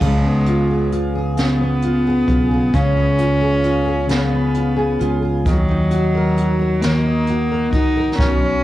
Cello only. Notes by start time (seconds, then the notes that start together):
0.02 G#3
1.41 B3
2.75 C#4
4.10 B3
5.47 F#3
6.81 A#3
7.73 D#4
8.18 C#4